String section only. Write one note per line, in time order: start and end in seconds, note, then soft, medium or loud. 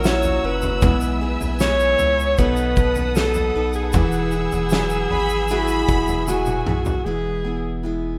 0.00 0.79 C#5 medium
0.00 0.79 F#5 medium
0.00 0.80 A#5 medium
0.00 2.34 E6 medium
0.81 2.37 B4 medium
0.81 2.37 E5 medium
0.81 2.36 G#5 medium
2.38 7.02 B4 medium
2.38 7.02 F#5 medium
2.38 3.93 A5 medium
2.38 3.93 D#6 medium
3.94 7.03 G#5 medium
3.94 7.03 E6 medium